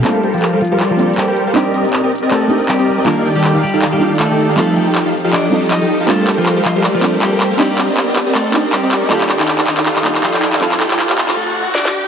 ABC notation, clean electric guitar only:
X:1
M:4/4
L:1/16
Q:"Swing 16ths" 1/4=159
K:Gm
V:1 name="Clean electric guitar"
[A,A]2 z [F,F]2 z [F,F]2 z [F,F]2 z [G,G]3 z | [G,G]3 z4 z [A,A]3 z [G,G]3 z | [B,B]2 z [G,G]2 z [G,G]2 z [G,G]2 z [A,A]3 z | [A,A]3 z4 z [Dd]3 z [Ee]3 z |
[A,A]2 z [F,F]2 z [F,F]2 z [F,F]2 z [G,G]3 z | [G,G]3 z4 z [A,A]3 z [G,G]3 z | [G,G]2 z [E,E]2 z [E,E]2 z [E,E]2 z [F,F]3 z | [F,F]3 z4 z [A,A]3 z [Dd]3 z |]